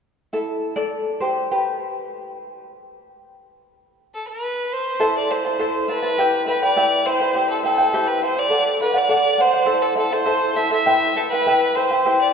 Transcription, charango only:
0.33 0.73 E4 medium
0.33 0.75 A4 medium
0.76 1.17 A4 medium
0.76 1.20 D5 medium
1.21 1.48 G4 medium
1.21 1.50 C5 medium
1.51 2.34 G4 medium
1.51 2.34 B4 medium
5.00 5.29 E4 medium
5.00 5.29 A4 medium
5.00 5.30 C5 medium
5.00 5.29 E5 medium
5.00 5.30 A5 medium
5.30 5.45 E4 soft
5.30 5.45 C5 soft
5.30 5.45 E5 medium
5.30 5.44 A5 medium
5.45 5.58 E4 soft
5.45 5.59 C5 soft
5.45 5.59 A5 soft
5.59 5.87 E4 medium
5.59 5.88 A4 medium
5.59 5.88 C5 medium
5.59 5.87 E5 medium
5.59 5.88 A5 medium
5.88 6.03 E4 medium
5.88 6.03 C5 medium
5.88 6.03 E5 soft
5.88 6.01 A5 medium
6.02 6.17 E4 soft
6.02 6.18 C5 soft
6.02 6.17 A5 medium
6.18 6.46 E4 medium
6.18 6.47 G4 medium
6.18 6.46 B4 medium
6.18 6.45 E5 medium
6.18 6.47 G5 medium
6.47 6.62 E4 medium
6.47 6.62 B4 medium
6.47 6.61 E5 medium
6.47 6.61 G5 soft
6.63 6.76 E4 soft
6.63 6.75 B4 soft
6.63 6.76 G5 soft
6.77 7.05 E4 medium
6.77 7.06 G4 medium
6.77 7.05 B4 medium
6.77 7.04 E5 medium
6.77 7.06 G5 medium
7.05 7.20 E4 medium
7.05 7.20 B4 medium
7.05 7.20 E5 medium
7.05 7.19 G5 medium
7.20 7.34 E4 soft
7.20 7.35 B4 soft
7.20 7.35 G5 soft
7.34 7.63 E4 medium
7.34 7.64 G4 medium
7.34 7.64 C5 medium
7.34 7.62 E5 medium
7.34 7.64 G5 medium
7.63 7.78 E4 soft
7.63 7.78 C5 medium
7.63 7.78 E5 medium
7.63 7.77 G5 medium
7.78 7.93 E4 soft
7.78 7.93 C5 soft
7.78 7.93 G5 medium
7.94 8.21 E4 medium
7.94 8.23 G4 medium
7.94 8.21 C5 medium
7.94 8.21 E5 medium
7.94 8.22 G5 medium
8.22 8.36 E4 medium
8.22 8.36 C5 medium
8.22 8.37 E5 soft
8.22 8.35 G5 soft
8.37 8.52 E4 soft
8.37 8.49 C5 soft
8.37 8.50 G5 soft
8.50 8.80 A4 medium
8.50 8.80 D5 medium
8.50 8.80 F#5 medium
8.81 8.95 A4 soft
8.81 8.94 D5 soft
8.81 8.93 F#5 medium
8.94 9.08 D5 soft
8.94 9.09 F#5 medium
9.09 9.37 A4 medium
9.09 9.37 D5 medium
9.09 9.38 F#5 medium
9.38 9.54 A4 medium
9.38 9.54 D5 soft
9.38 9.52 F#5 medium
9.53 9.66 D5 soft
9.53 9.67 F#5 soft
9.66 9.95 E4 medium
9.66 9.95 A4 medium
9.66 9.97 C5 medium
9.66 9.94 E5 medium
9.66 9.96 A5 medium
9.95 10.11 E4 medium
9.95 10.11 A4 medium
9.95 10.12 E5 medium
9.95 10.10 A5 medium
10.11 10.25 E4 soft
10.11 10.25 A4 soft
10.11 10.25 A5 soft
10.26 10.55 E4 medium
10.26 10.55 A4 medium
10.26 10.56 C5 medium
10.26 10.54 E5 medium
10.26 10.55 A5 medium
10.55 10.70 E4 medium
10.55 10.70 A4 soft
10.55 10.71 E5 medium
10.55 10.69 A5 medium
10.70 10.85 E4 soft
10.70 10.86 A4 soft
10.70 10.86 A5 soft
10.86 11.15 E4 medium
10.86 11.16 G4 medium
10.86 11.15 B4 medium
10.86 11.14 E5 medium
10.86 11.16 G5 medium
11.16 11.31 E4 soft
11.16 11.31 B4 medium
11.16 11.31 E5 soft
11.16 11.31 G5 medium
11.33 11.46 E4 soft
11.33 11.46 B4 soft
11.33 11.46 G5 medium
11.46 11.75 E4 medium
11.46 11.75 G4 medium
11.46 11.76 B4 medium
11.46 11.74 E5 medium
11.46 11.76 G5 medium
11.76 11.90 E4 medium
11.76 11.90 B4 medium
11.76 11.90 E5 medium
11.76 11.90 G5 medium
11.91 12.06 E4 soft
11.91 12.05 B4 soft
11.91 12.05 G5 soft
12.05 12.33 E4 medium
12.05 12.33 G4 medium
12.05 12.33 C5 medium
12.05 12.33 E5 medium
12.05 12.33 G5 medium

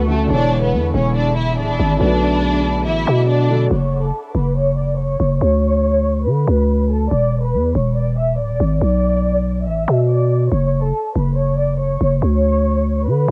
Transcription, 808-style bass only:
0.00 0.28 D2 loud
0.31 0.74 E1 loud
0.73 0.93 E2 loud
0.94 1.60 E1 loud
1.58 1.70 D1 loud
1.69 1.79 E1 loud
1.79 2.00 G#1 loud
2.01 2.87 B1 loud
2.86 3.06 A1 loud
3.07 3.68 B2 loud
3.71 4.12 F#1 loud
4.35 5.16 F#1 loud
5.20 5.40 F#1 loud
5.41 6.28 D2 loud
6.26 6.47 D3 loud
6.48 7.09 D2 loud
7.11 7.56 E1 loud
7.54 7.74 E2 medium
7.75 8.41 E1 loud
8.39 8.51 D1 loud
8.50 8.60 E1 loud
8.60 8.81 G#1 loud
8.81 9.68 B1 loud
9.67 9.87 A1 loud
9.88 10.49 B2 loud
10.52 10.93 F#1 loud
11.16 11.97 F#1 loud
12.01 12.21 F#1 loud
12.22 13.09 D2 loud
13.07 13.27 D3 loud

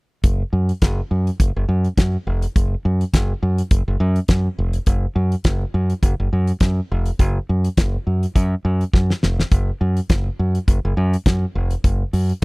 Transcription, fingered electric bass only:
0.24 0.42 F#1 medium
0.53 0.71 F#2 medium
0.82 1.00 F#1 medium
1.11 1.29 F#2 medium
1.40 1.50 F#1 medium
1.56 1.64 F#1 medium
1.69 1.87 F#2 medium
1.98 2.16 F#2 medium
2.27 2.45 F1 medium
2.56 2.74 F#1 medium
2.85 3.03 F#2 medium
3.14 3.32 F#1 loud
3.43 3.61 F#2 medium
3.71 3.81 F#1 medium
3.88 3.96 F#1 medium
4.00 4.18 F#2 loud
4.29 4.47 F#2 medium
4.58 4.77 F1 medium
4.87 5.05 F#1 medium
5.16 5.34 F#2 medium
5.45 5.63 F#1 medium
5.74 5.93 F#2 medium
6.03 6.13 F#1 medium
6.20 6.28 F#1 medium
6.33 6.51 F#2 medium
6.61 6.79 F#2 medium
6.91 7.10 F1 medium
7.19 7.38 F#1 loud
7.49 7.67 F#2 medium
7.78 7.96 F#1 medium
8.07 8.25 F#2 medium
8.36 8.54 F#2 loud
8.65 8.83 F#2 medium
8.94 9.12 F#2 medium
9.23 9.42 F1 medium
9.51 9.70 F#1 medium
9.81 9.99 F#2 medium
10.10 10.28 F#1 medium
10.39 10.58 F#2 medium
10.68 10.78 F#1 medium
10.85 10.93 F#1 medium
10.97 11.15 F#2 loud
11.26 11.44 F#2 medium
11.55 11.74 F1 medium
11.84 12.02 F#1 loud
12.13 12.32 F#2 medium

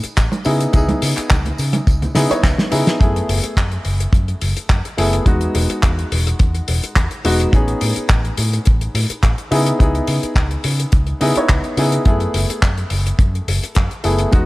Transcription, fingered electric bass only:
0.04 muted fingered electric bass stroke soft
0.17 0.28 A1 medium
0.46 0.66 C#3 loud
0.74 0.93 C#2 medium
1.02 1.12 C#3 loud
1.18 muted fingered electric bass stroke soft
1.31 1.50 C#2 medium
1.59 1.79 C#3 loud
1.87 2.07 C#2 medium
2.16 2.26 C#3 medium
2.31 muted fingered electric bass stroke soft
2.43 2.54 C#2 loud
2.72 2.82 C#3 medium
3.01 3.20 F#2 medium
3.29 3.39 F#1 loud
3.44 muted fingered electric bass stroke soft
3.57 3.77 F#2 loud
3.86 4.05 F#1 loud
4.13 4.33 F#2 medium
4.42 4.52 F#1 medium
4.57 muted fingered electric bass stroke soft
4.70 4.80 F#2 medium
4.98 5.18 F#1 medium
5.26 5.46 E2 medium
5.55 5.65 E1 loud
5.83 6.03 E2 loud
6.12 6.32 E1 loud
6.40 6.60 E2 medium
6.68 6.78 E1 medium
6.83 muted fingered electric bass stroke soft
6.96 7.06 E2 medium
7.25 7.44 E1 medium
7.53 7.73 A1 medium
7.82 7.92 A2 loud
7.97 muted fingered electric bass stroke soft
8.10 8.29 A1 loud
8.38 8.58 A2 loud
8.67 8.86 A1 medium
8.95 9.05 A2 medium
9.10 muted fingered electric bass stroke soft
9.23 9.33 A1 medium
9.51 9.71 C#3 loud
9.80 10.00 C#2 medium
10.08 10.18 C#3 loud
10.23 muted fingered electric bass stroke soft
10.36 10.56 C#2 loud
10.65 10.84 C#3 loud
10.93 11.12 C#2 medium
11.21 11.31 C#3 medium
11.36 muted fingered electric bass stroke soft
11.49 11.59 C#2 medium
11.77 11.97 C#3 medium
12.06 12.26 F#2 loud
12.34 12.44 F#1 loud
12.49 muted fingered electric bass stroke soft
12.63 12.82 F#2 loud
12.91 13.11 F#1 loud
13.19 13.39 F#2 medium
13.48 13.58 F#1 medium
13.77 13.86 F#2 medium
14.05 14.24 F#1 loud
14.33 14.46 E2 medium

